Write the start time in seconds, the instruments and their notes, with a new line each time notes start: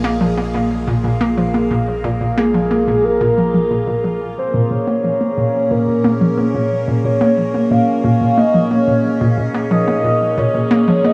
Already playing: sub bass A#1, ambient pad A#3 F4 G#4 A#4 F5
0.04 synth arpeggio sound A#3
0.21 synth arpeggio sound F3
0.37 synth arpeggio sound A#3
0.54 synth arpeggio sound A#2
0.87 synth arpeggio sound A#2
1.04 synth arpeggio sound A#2
1.21 synth arpeggio sound A#3
1.38 synth arpeggio sound F3
1.54 synth arpeggio sound A#3
1.71 synth arpeggio sound A#2
2.04 synth arpeggio sound A#2
2.21 synth arpeggio sound A#2
2.38 synth arpeggio sound A#3, soft synth lead G#4
2.54 synth arpeggio sound F3
2.71 synth arpeggio sound A#3
2.88 synth arpeggio sound A#2
3.04 soft synth lead A#4
3.21 synth arpeggio sound A#2
3.38 synth arpeggio sound F3
3.54 synth arpeggio sound F3
3.71 synth arpeggio sound A#2
3.87 synth arpeggio sound A#2
4.04 synth arpeggio sound F3
4.37 ambient pad A#2 A#3 C#4 G#4 A#4, soft synth lead C5
4.54 synth arpeggio sound A#2
4.71 synth arpeggio sound A#2, soft synth lead C#5
4.87 synth arpeggio sound A#3
5.04 synth arpeggio sound F3
5.21 synth arpeggio sound A#3
5.38 synth arpeggio sound A#2
5.71 synth arpeggio sound A#2, soft synth lead A#4
5.88 synth arpeggio sound A#2
6.04 synth arpeggio sound A#3
6.21 synth arpeggio sound F3
6.38 synth arpeggio sound A#3, soft synth lead C#5
6.54 synth arpeggio sound A#2
6.88 synth arpeggio sound A#2
7.04 synth arpeggio sound A#2, soft synth lead C#5
7.21 synth arpeggio sound A#3
7.38 synth arpeggio sound F3
7.54 synth arpeggio sound A#3
7.71 synth arpeggio sound A#2, soft synth lead F5
8.04 synth arpeggio sound A#2
8.21 synth arpeggio sound A#2
8.38 synth arpeggio sound A#3, soft synth lead D#5
8.54 synth arpeggio sound F3
8.71 synth arpeggio sound A#3, soft synth lead C#5
8.88 synth arpeggio sound A#2
9.21 synth arpeggio sound A#2
9.38 synth arpeggio sound A#2
9.54 synth arpeggio sound A#3
9.71 synth arpeggio sound F3, soft synth lead D#5
9.88 synth arpeggio sound A#3
10.04 synth arpeggio sound A#2
10.38 synth arpeggio sound A#2, soft synth lead C#5
10.54 synth arpeggio sound A#2
10.71 synth arpeggio sound A#3
10.88 synth arpeggio sound F3
11.04 synth arpeggio sound A#3, soft synth lead D#5